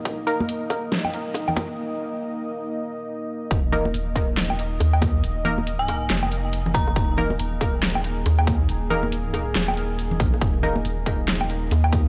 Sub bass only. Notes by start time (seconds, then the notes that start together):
3.51 D#1
3.94 D#1
4.80 D#2
5.23 D#1
6.10 F1
6.96 D#1
7.39 D#1
8.26 D#2
8.69 D#1
9.55 D#1
10.20 A#1
10.42 D#1
10.85 D#1
11.71 D#2